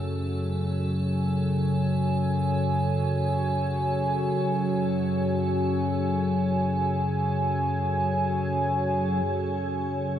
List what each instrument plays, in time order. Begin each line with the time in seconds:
Already playing: synth drone F#2 C#3, analog synth pad F#4 C#5 G#5, ambient pad A4
9.24 synth drone F#2 C#3